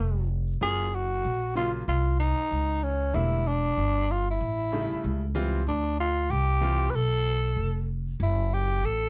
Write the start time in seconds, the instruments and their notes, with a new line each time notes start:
Already playing: upright bass F1, tenor saxophone B3
0.61 upright bass F#1, upright piano C#3 F#3 A#3 F4, tenor saxophone G#4
0.95 tenor saxophone F#4
1.25 upright bass A#1
1.55 upright piano C#3 F#3 A#3 F4, tenor saxophone F4
1.88 upright bass C2, tenor saxophone F4
2.20 tenor saxophone D#4
2.40 muted upright bass stroke
2.51 upright bass C#2
2.83 tenor saxophone C#4
3.14 upright bass E1, upright piano D3 G3 A#3 E4, tenor saxophone E4
3.47 tenor saxophone D4
3.77 upright bass G1
4.11 tenor saxophone F4
4.30 tenor saxophone E4
4.41 upright bass A1
4.72 upright piano C#3 G3 A3 D#4
4.80 upright piano E4
4.92 muted upright bass stroke
5.04 upright bass C#2
5.35 upright piano E3 G3 C4 F4
5.67 upright bass D2, tenor saxophone D4
6.00 tenor saxophone F4
6.30 upright bass C2, tenor saxophone G4
6.61 upright piano E3 G3 C4 F4
6.90 upright bass B1, tenor saxophone B4
6.95 tenor saxophone A4
7.56 upright bass F1
8.20 upright bass F#1, tenor saxophone E4
8.54 tenor saxophone G4
8.83 upright bass A1, tenor saxophone A4